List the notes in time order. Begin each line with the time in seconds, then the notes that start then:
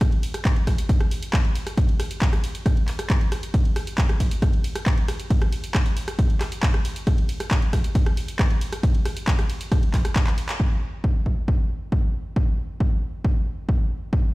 0.01 kick, cross-stick, closed hi-hat, ride
0.12 ride
0.23 open hi-hat, ride
0.34 cross-stick, closed hi-hat, ride
0.45 kick, clap, closed hi-hat, ride
0.56 ride
0.67 kick, cross-stick, open hi-hat, ride
0.78 closed hi-hat, ride
0.89 kick, closed hi-hat, ride
1.00 cross-stick, ride
1.11 open hi-hat, ride
1.23 closed hi-hat, ride
1.33 kick, cross-stick, clap, closed hi-hat, ride
1.45 ride
1.55 open hi-hat, ride
1.67 cross-stick, closed hi-hat, ride
1.77 kick, closed hi-hat, ride
1.89 ride
2.00 cross-stick, open hi-hat, ride
2.11 closed hi-hat, ride
2.22 kick, clap, closed hi-hat, ride
2.33 cross-stick, open hi-hat, ride
2.44 open hi-hat, ride
2.55 closed hi-hat, ride
2.66 kick, cross-stick, closed hi-hat, ride
2.77 ride
2.88 clap, open hi-hat, ride
2.99 cross-stick, closed hi-hat, ride
3.10 kick, clap, closed hi-hat, ride
3.21 ride
3.32 cross-stick, open hi-hat, ride
3.43 closed hi-hat, ride
3.54 kick, closed hi-hat, ride
3.65 ride
3.76 cross-stick, open hi-hat, ride
3.87 closed hi-hat, ride
3.98 kick, clap, closed hi-hat, ride
4.09 cross-stick, ride
4.20 kick, open hi-hat, ride
4.31 closed hi-hat, ride
4.42 kick, cross-stick, closed hi-hat, ride
4.53 ride
4.64 open hi-hat, ride
4.75 cross-stick, closed hi-hat, ride
4.86 kick, clap, closed hi-hat, ride
4.98 ride
5.08 cross-stick, open hi-hat, ride
5.20 closed hi-hat, ride
5.30 kick, closed hi-hat, ride
5.42 cross-stick, ride
5.53 open hi-hat, ride
5.64 closed hi-hat, ride
5.75 kick, cross-stick, clap, closed hi-hat, ride
5.86 open hi-hat, ride
5.97 open hi-hat, ride
6.08 cross-stick, closed hi-hat, ride
6.19 kick, closed hi-hat, ride
6.30 ride
6.41 cross-stick, clap, open hi-hat, ride
6.52 closed hi-hat, ride
6.63 kick, clap, closed hi-hat, ride
6.74 cross-stick, ride
6.85 open hi-hat, ride
6.96 closed hi-hat, ride
7.07 kick, cross-stick, closed hi-hat, ride
7.18 ride
7.29 open hi-hat, ride
7.40 cross-stick, closed hi-hat, ride
7.51 kick, clap, closed hi-hat, ride
7.62 ride
7.73 kick, cross-stick, open hi-hat, ride
7.84 closed hi-hat, ride
7.95 kick, closed hi-hat, ride
8.06 cross-stick, ride
8.17 open hi-hat, ride
8.28 closed hi-hat, ride
8.39 kick, cross-stick, clap, closed hi-hat, ride
8.50 ride
8.61 open hi-hat, ride
8.73 cross-stick, closed hi-hat, ride
8.83 kick, closed hi-hat, ride
8.95 ride
9.05 cross-stick, open hi-hat, ride
9.17 closed hi-hat, ride
9.27 kick, clap, closed hi-hat, ride
9.39 cross-stick, open hi-hat, ride
9.50 open hi-hat, ride
9.61 closed hi-hat, ride
9.72 kick, cross-stick, closed hi-hat, ride
9.83 ride
9.94 kick, clap, open hi-hat, ride
10.05 cross-stick, closed hi-hat, ride
10.16 kick, clap, closed hi-hat, ride
10.27 clap, ride
10.38 open hi-hat, ride
10.49 clap, closed hi-hat, ride
10.60 kick
11.04 kick
11.26 kick
11.48 kick
11.92 kick
12.36 kick
12.80 kick
13.25 kick
13.69 kick
14.13 kick